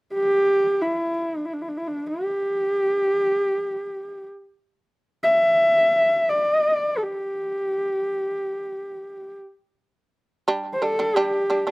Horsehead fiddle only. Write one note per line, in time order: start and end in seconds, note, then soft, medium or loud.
0.14 0.83 G4 medium
0.82 1.38 E4 medium
1.37 1.47 D4 medium
1.45 1.55 E4 medium
1.53 1.63 D4 soft
1.62 1.70 E4 medium
1.68 1.79 D4 medium
1.77 1.89 E4 medium
1.88 2.08 D4 medium
2.07 4.24 G4 medium
5.23 6.31 E5 medium
6.30 6.99 D5 medium
6.98 7.05 A4 soft
7.03 9.35 G4 medium
10.73 10.83 C5 medium
10.82 11.17 A4 medium
11.15 11.71 G4 medium